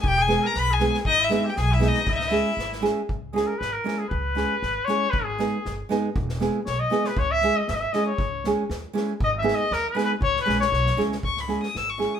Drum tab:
SD |--o-o-oo|--o-o-oo|-oo-ooo-|--o-o-o-|
BD |o-------|o-------|o-------|o-------|

SD |--o-o-o-|--o-o-o-|-oo-o-oo|--o-o-o-|
BD |o-------|o-------|o-------|o-------|

SD |--o-o-o-|--o-o-o-|-ooooooo|-oooo-o-|
BD |o-------|o-------|o-------|o-------|